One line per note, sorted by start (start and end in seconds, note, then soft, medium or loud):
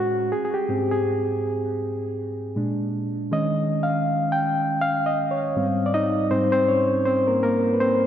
0.00 0.33 A2 medium
0.00 0.32 G#3 medium
0.00 0.32 C#4 medium
0.00 0.33 F#4 medium
0.32 0.44 G#4 medium
0.45 0.52 G#4 medium
0.54 0.68 G4 medium
0.69 1.77 G#2 medium
0.69 1.77 C4 medium
0.69 1.77 G4 soft
0.91 1.25 G#4 medium
2.56 3.27 A#2 medium
2.56 3.27 G#3 medium
2.56 3.28 D4 medium
3.31 3.83 D#3 medium
3.31 3.83 G#3 medium
3.31 3.83 C#4 medium
3.31 3.83 D#5 medium
3.83 4.33 F5 medium
4.32 4.83 G5 loud
4.81 5.07 F5 loud
5.06 5.32 D#5 medium
5.31 5.66 C#5 medium
5.56 6.27 G#2 medium
5.56 6.27 G3 medium
5.56 6.28 C4 medium
5.86 5.93 D5 medium
5.94 6.29 D#4 medium
5.94 6.32 D#5 loud
6.31 8.07 G#2 medium
6.31 8.07 G3 soft
6.31 6.51 C4 medium
6.31 8.07 D#4 medium
6.31 6.51 C5 medium
6.52 6.68 C4 medium
6.52 6.69 C5 medium
6.68 7.04 C#4 medium
6.68 7.07 C#5 medium
7.05 7.26 C4 medium
7.05 7.25 C5 medium
7.27 7.43 A#3 medium
7.27 7.42 A#4 medium
7.43 7.73 A#3 medium
7.43 7.76 A#4 medium
7.74 7.80 B4 medium
7.80 8.07 C4 medium
7.80 8.07 C5 medium